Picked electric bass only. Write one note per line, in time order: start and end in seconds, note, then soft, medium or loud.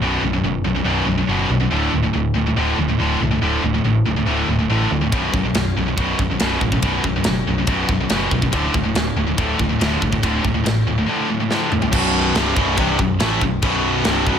0.01 0.17 B0 medium
0.22 0.38 B0 medium
0.43 0.59 F#1 medium
0.64 0.80 B0 medium
0.85 1.01 B0 medium
1.06 1.22 B0 medium
1.28 1.44 F#1 medium
1.50 1.66 B1 medium
1.71 1.87 D1 medium
1.93 2.09 D1 medium
2.15 2.30 D1 medium
2.35 2.51 D1 loud
2.57 2.73 D1 medium
2.78 2.94 D1 medium
3.00 3.15 D1 medium
3.22 3.37 C1 medium
3.42 3.58 D1 medium
3.63 3.79 D1 medium
3.85 4.00 A1 medium
4.06 4.22 D1 medium
4.27 4.43 D1 medium
4.48 4.64 D1 medium
4.70 4.86 A1 medium
4.91 5.07 D2 medium
5.13 5.28 B0 medium
5.33 5.49 B0 medium
5.55 5.71 B0 medium
5.76 5.92 B0 medium
5.98 6.13 B0 medium
6.19 6.35 B0 medium
6.41 6.56 B0 loud
6.61 6.77 A1 medium
6.83 6.98 B0 medium
7.03 7.19 B0 medium
7.26 7.41 F#1 medium
7.47 7.63 B0 medium
7.67 7.83 B0 medium
7.88 8.04 B0 medium
8.10 8.26 F#1 loud
8.31 8.47 B1 medium
8.52 8.68 D1 medium
8.74 8.90 D1 medium
8.94 9.10 D1 medium
9.16 9.32 D1 medium
9.38 9.54 D1 medium
9.59 9.75 D1 medium
9.80 9.96 D1 loud
10.02 10.17 C1 medium
10.23 10.39 D1 medium
10.44 10.60 D1 medium
10.65 10.81 A1 loud
10.86 11.02 D1 medium
11.93 12.33 B0 loud
12.35 12.55 C1 loud
12.56 12.76 B0 loud
12.78 12.98 C1 medium
12.99 13.19 B0 medium
13.21 13.41 A1 loud
13.41 13.61 B0 medium
13.63 14.02 B0 medium
14.06 14.26 C1 loud
14.26 14.39 B0 loud